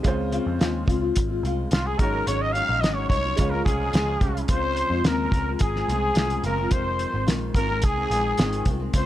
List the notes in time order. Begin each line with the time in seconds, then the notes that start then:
0.03 C#2 C#3 G#3 C4 C#4 F4, kick, closed hi-hat
0.07 C5
0.31 C#3 G#3 C4 F4, closed hi-hat
0.47 F2
0.59 D#2 C#3 G#3 C4 F4, snare, closed hi-hat
0.86 C#2 C#3 G#3 C4 F4, kick, closed hi-hat
1.01 G#3 C4 F4
1.16 G#1, kick, closed hi-hat
1.28 G#3 C4 F4
1.43 C2 C#3 G#3 C4 F4, closed hi-hat
1.71 C2 C#3 G#3 C4 F4, snare, closed hi-hat
1.86 G#4
1.97 G#1 G#2 F#3 G#3 C#4 D#4 F#4 A#4, kick, closed hi-hat
2.02 C#5
2.26 G#1 G#2 F#3 C#4 D#4 C#5, closed hi-hat
2.41 D#5
2.53 G#2 F#3 C#4 D#4 F5, closed hi-hat
2.69 A#1
2.80 G#1 G#2 F#3 C#4 D#4 D#5, snare, closed hi-hat
2.94 C#5
3.08 C2 G#2 F#3 C#4 D#4 C#5, kick, closed hi-hat
3.24 F#3 C#4 D#4
3.36 C#2 C#3 F3 G#3 C#4 F4, kick, closed hi-hat
3.41 C#5
3.50 F3 G#3 C#4 A#4
3.65 C2 C#3 F3 G#3 C#4 G#4, kick, closed hi-hat
3.92 C#2 C#3 F3 G#3 C#4, snare, closed hi-hat
4.20 C2 C#3 F3 G#3 C#4, kick, closed hi-hat
4.37 closed hi-hat
4.48 C#2 C#3 F3 G#3 C4 C5, kick, closed hi-hat
4.77 closed hi-hat
4.90 F2 F3 G#3 C4
5.04 D#2 C#3 F3 G#3 C4 A#4, snare, closed hi-hat
5.32 C#2 C#3 F3 G#3 C4, kick, closed hi-hat
5.48 F3 G#3 C4
5.54 A#4
5.59 G#1 G#4, kick, closed hi-hat
5.75 F3 G#3 C4, snare
5.88 C2 C#3 F3 G#3 C4, closed hi-hat
6.15 C2 C#3 F3 G#3 C4, snare, closed hi-hat
6.30 closed hi-hat
6.44 F#1 C#3 F3 G#3 C4 A#4, closed hi-hat
6.58 F3 G#3 C4
6.71 F1 F2 D#3 G#3 C4 C5, kick, closed hi-hat
6.99 closed hi-hat
7.12 G#1 D#3 G#3 C4
7.27 A#1 F2 D#3 G#3 C4, snare, closed hi-hat
7.54 G#1 F2 D#3 G#3 C4 A#4, kick, closed hi-hat
7.69 D#3 G#3 C4
7.82 C2 G#4, kick, closed hi-hat
7.97 D#3 G#3 C4
8.10 A#1 F2 D#3 G#3 C4, closed hi-hat
8.37 G#1 F2 D#3 G#3 C4, snare, closed hi-hat
8.53 closed hi-hat
8.65 C2 F2 D#3 G#3 C4, kick, closed hi-hat
8.80 D#3 G#3 C4
8.94 C#2 C#3 F3 G#3 C4 C5, kick, closed hi-hat